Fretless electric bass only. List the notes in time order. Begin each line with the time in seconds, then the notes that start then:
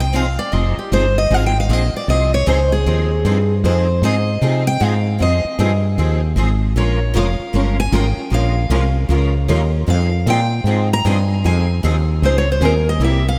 Already playing: C2
0.53 F1
0.77 muted fretless electric bass stroke
0.92 G1
1.30 G#1
1.69 A#1
1.93 muted fretless electric bass stroke
2.08 C2
2.47 C#2
2.86 D#2
3.25 G2
3.64 F2
4.02 G#2
4.42 C3
4.81 G#2
5.21 F2
5.45 muted fretless electric bass stroke
5.59 G2
5.98 D#2
6.36 G#1
6.76 A#1
7.15 F1
7.39 muted fretless electric bass stroke
7.54 G1
7.92 G#1
8.31 A#1
8.70 C2
9.09 C#2
9.49 D#2
9.88 F2
10.26 A#2
10.64 G#2
11.05 G2
11.45 F2
11.84 D#2
12.22 C#2
12.61 D#2
13.00 C2